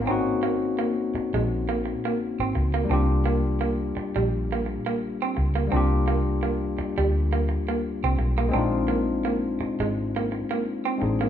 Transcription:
X:1
M:4/4
L:1/16
Q:"Swing 16ths" 1/4=85
K:Cm
V:1 name="Tine electric piano"
[B,C_DE_G]16 | [G,B,DFG]16 | [G,B,DFG]16 | [A,CDEF]12- [A,CDEF]2 [A,CDEA]2 |]
V:2 name="Clean electric guitar"
C z B, z B, z2 A, z B, z B, z C z B, | C z B, z B, z2 G, z B, z B, z C z B, | C z B, z B, z2 G, z B, z B, z C z B, | C z B, z B, z2 A, z B, z B, z C z B, |]
V:3 name="Fingered electric bass" clef=bass
A,,,6 z B,,,4 z2 A,,, _D,,2 | C,,6 z B,,,4 z3 _D,,2 | C,,6 z D,,4 z2 C,, =B,,,2 | B,,,6 z A,,,4 z3 =A,,,2 |]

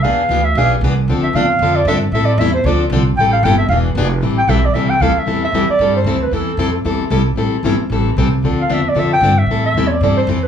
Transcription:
X:1
M:4/4
L:1/16
Q:"Swing" 1/4=228
K:Am
V:1 name="Clarinet"
f6 e2 f2 z6 | z2 e2 f6 d2 e2 z2 | e2 d2 e2 c2 d2 z6 | g2 f2 g2 e2 f2 z6 |
z2 g2 e2 d2 e2 g2 f2 e2- | e2 e4 d4 c4 B2 | A8 z8 | z16 |
z2 f2 e2 d2 e2 g4 e2- | e2 e3- e/2 ^c/2 d2 d2 =c4 B2 |]
V:2 name="Steel-string acoustic guitar"
[E,B,D^G]2 z2 [E,B,DG]2 z2 [E,B,DG]2 z2 [E,B,DG]2 z2 | [D,F,CDA]2 z2 [D,F,CDA]2 z2 [D,F,CDA]2 z2 [D,F,CDA]2 z2 | [E,G,CEA]2 z2 [E,G,CEA]2 z2 [D,F,CDA]2 z2 [D,F,CDA]2 z2 | [E,G,CEA]2 z2 [E,G,CEA]2 z2 [E,B,D^G]2 z2 [E,B,DG]2 z2 |
[E,G,CEA]2 z2 [E,G,CEA]2 z2 [E,G,CEA]2 z2 [E,G,CEA]2 z2 | [E,G,CEA]2 z2 [E,G,CEA]2 z2 [E,G,CEA]2 z2 [E,G,CEA]2 z2 | [E,G,CEA]2 z2 [E,G,CEA]2 z2 [E,G,CEA]2 z2 [E,G,CEA]2 z2 | [E,G,CEA]2 z2 [E,G,CEA]2 z2 [E,G,CEA]2 z2 [E,G,CEA]2 z2 |
[D,F,CDA]2 z2 [D,F,CDA]2 z2 [D,F,CDA]2 z2 [D,F,CDA]2 z2 | [E,G,CEA]2 z2 [E,G,CEA]2 z2 [E,G,CEA]2 z2 [E,G,CEA]2 z2 |]
V:3 name="Upright bass" clef=bass
E,,4 D,,4 B,,,4 C,,4 | D,,2 z2 E,,4 F,,4 G,,4 | A,,4 E,,4 D,,4 C,,4 | A,,,4 G,,,4 E,,,4 F,,,4 |
A,,,4 B,,,4 C,,4 D,,2 z2 | E,,4 F,,2 z2 G,,4 D,,4 | E,,4 F,,4 E,,2 z2 C,,4 | A,,,2 z2 G,,,2 z2 A,,,4 C,,4 |
D,,4 E,,4 F,,4 G,,4 | A,,4 E,,4 G,,4 F,,4 |]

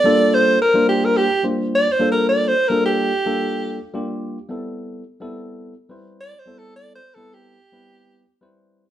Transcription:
X:1
M:4/4
L:1/16
Q:"Swing 16ths" 1/4=108
K:Aphr
V:1 name="Alto saxophone"
d2 c2 B2 G B G2 z2 (3d2 c2 B2 | (3d2 c2 B2 G8 z4 | z12 (3d2 c2 A2 | (3d2 c2 A2 G8 z4 |]
V:2 name="Tine electric piano"
[G,B,DFA]4 z [G,B,DFc]4 z [G,B,DFc]3 z [G,B,DFA]2- | [G,B,DFA]2 z [G,B,DFA]3 z [G,B,DFA]4 z [G,B,DFG]3 z | [G,=B,CEA]4 z [G,B,CEA]4 z [G,CE=Bc]3 z [G,B,CEA]2- | [G,=B,CEA]2 z [G,B,CE=B]3 z [G,B,CEB]4 z [G,CEBc]3 z |]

